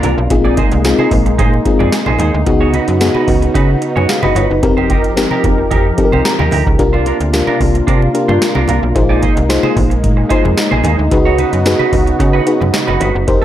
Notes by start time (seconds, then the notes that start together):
Already playing: C3 A#3 D4 F4
0.03 C2 D4 F4 A#4, closed hi-hat, low conga
0.18 B1, muted clean electric guitar stroke
0.30 A#1 G#3 C4 D#4 F4 G#4, muted clean electric guitar stroke, kick, closed hi-hat
0.45 D#4 G#4 D5, muted conga
0.57 D#4 G#4 C5, kick, closed hi-hat, high conga
0.72 C2, muted clean electric guitar stroke, closed hi-hat
0.84 C4 D#4 F4 G#4, muted clean electric guitar stroke, snare, closed hi-hat, muted conga
0.98 D#4 G#4 C5, high conga
1.11 A#1, muted clean electric guitar stroke, kick, open hi-hat, low conga
1.26 muted clean electric guitar stroke, closed hi-hat
1.38 A#2 D#4 G#4 C5, kick, closed hi-hat
1.53 muted clean electric guitar stroke, muted conga
1.65 C4 D#4 F4 G#4, muted clean electric guitar stroke, kick, closed hi-hat
1.79 F2 D#4 G#4 D5, high conga
1.92 muted clean electric guitar stroke, snare, closed hi-hat, muted conga
2.06 A#1 D#4 G#4 C5, muted conga, high conga
2.19 D#2 D#4 G#4 C5, closed hi-hat, low conga
2.33 D2, muted clean electric guitar stroke
2.46 C#2 C#3 B3 D#4 F#4 G#4, muted clean electric guitar stroke, kick, closed hi-hat, muted conga
2.61 D#4 F#4 C#5
2.73 D#4 F#4 B4, closed hi-hat, high conga
2.87 F#2, muted clean electric guitar stroke, closed hi-hat
3.00 B3 D#4 F#4 G#4, muted clean electric guitar stroke, snare, closed hi-hat, muted conga
3.14 D#4 F#4 B4, high conga
3.28 C#2, muted clean electric guitar stroke, kick, open hi-hat, low conga
3.42 muted clean electric guitar stroke, closed hi-hat
3.54 C#3 D#4 F#4 B4, kick, closed hi-hat
3.69 muted clean electric guitar stroke
3.82 muted clean electric guitar stroke, closed hi-hat
3.96 F#2 D#4 F#4 B4 C#5 G#5, high conga
4.09 G#4 F5, muted clean electric guitar stroke, snare, closed hi-hat, muted conga
4.23 F#1 D#4 F#4 B4 D#5, muted conga, high conga
4.35 G1 D#4 F4 F#4 B4 C#5, closed hi-hat, low conga
4.50 F#1 D#4 B4, muted clean electric guitar stroke
4.63 F1 F3 C4 D#4 G4 A#4, muted clean electric guitar stroke, kick, closed hi-hat, low conga
4.77 D#4 G4 C5, muted conga
4.90 D#4 G4 A#4, kick, closed hi-hat, high conga
5.04 G1, muted clean electric guitar stroke, closed hi-hat
5.16 C4 D#4 G4 A#4, muted clean electric guitar stroke, snare, closed hi-hat, muted conga
5.31 D#4 G4 A#4, high conga
5.44 F1, muted clean electric guitar stroke, kick, closed hi-hat, low conga
5.58 muted clean electric guitar stroke
5.71 F2 D#4 G4 A#4, kick, closed hi-hat, muted conga
5.85 muted clean electric guitar stroke
5.98 C4 D#4 G4 A4, muted clean electric guitar stroke, kick, closed hi-hat
6.05 A#4
6.12 C2 D#4 G4 C5, high conga
6.25 A#5, muted clean electric guitar stroke, snare, closed hi-hat, muted conga
6.39 D#2 D#4 G4 A#4, muted conga, high conga
6.51 D2 D#4 G4 A#4, open hi-hat, low conga
6.66 C#2, muted clean electric guitar stroke, kick
6.79 C2 C3 A#3 D4 F4 G4 A#4, muted clean electric guitar stroke, kick, closed hi-hat, muted conga
6.93 D4 F4 C5, muted conga
7.06 D4 F4 A#4, closed hi-hat, high conga
7.20 D2, muted clean electric guitar stroke, closed hi-hat
7.33 D4 F4 G4 A#4, muted clean electric guitar stroke, snare, closed hi-hat, muted conga
7.47 D4 F4 A#4, high conga
7.60 C2, muted clean electric guitar stroke, kick, open hi-hat, low conga
7.75 muted clean electric guitar stroke, closed hi-hat
7.87 C3 D4 F4 A#4, kick, closed hi-hat
8.02 muted clean electric guitar stroke, muted conga
8.14 D4 F4 G4 A#4, muted clean electric guitar stroke, closed hi-hat
8.28 G2 D4 F4 C5, high conga
8.41 muted clean electric guitar stroke, snare, closed hi-hat
8.55 C2 D4 F4 A#4, muted conga, high conga
8.68 C2 D4 F4 A#4, closed hi-hat, low conga
8.82 B1, muted clean electric guitar stroke
8.95 A#1 G#3 D#4 F4 G#4 C5, muted clean electric guitar stroke, kick, closed hi-hat, muted conga
9.09 D#4 G#4 D5
9.22 D#4 G#4 C5, kick, closed hi-hat, high conga
9.36 C2, muted clean electric guitar stroke, closed hi-hat
9.49 D#4 F4 G#4 C5, muted clean electric guitar stroke, snare, closed hi-hat
9.63 D#4 G#4 C5, muted conga, high conga
9.76 A#1, muted clean electric guitar stroke, kick, open hi-hat, low conga
9.90 muted clean electric guitar stroke, closed hi-hat
10.04 A#2, kick, closed hi-hat, muted conga
10.17 muted clean electric guitar stroke
10.29 D#4 F4 G#4 C5, kick, closed hi-hat
10.44 F2, muted clean electric guitar stroke, high conga
10.57 muted clean electric guitar stroke, snare, closed hi-hat, muted conga
10.71 A#1 D#4 G#4 C5, high conga
10.84 D#2 D#4 G#4 C5, closed hi-hat, low conga
10.99 D2, muted clean electric guitar stroke
11.11 C#2 C#3 B3 D#4 F#4 G#4 B4, muted clean electric guitar stroke, kick, closed hi-hat
11.25 D#4 F#4 C#5
11.38 D#4 F#4 B4, closed hi-hat, high conga
11.52 F#2, muted clean electric guitar stroke, closed hi-hat
11.65 D#4 F#4 G#4 B4, muted clean electric guitar stroke, snare, closed hi-hat
11.79 D#4 F#4 B4, high conga
11.92 C#2, muted clean electric guitar stroke, kick, open hi-hat, low conga
12.07 muted clean electric guitar stroke, closed hi-hat
12.19 C#3, muted clean electric guitar stroke, kick, closed hi-hat, muted conga
12.33 D#4 F#4 B4
12.47 D#4 F#4 G#4 B4, muted clean electric guitar stroke, closed hi-hat
12.61 F#2, muted clean electric guitar stroke, high conga
12.73 muted clean electric guitar stroke, snare, closed hi-hat, muted conga
12.87 F#1 D#4 F#4 B4, muted conga, high conga
13.00 G1 D#4 F#4 B4, closed hi-hat, low conga
13.14 F#1, muted clean electric guitar stroke
13.27 F1 F3 D#4 G4 A#4 C5, muted clean electric guitar stroke, kick, closed hi-hat
13.42 A4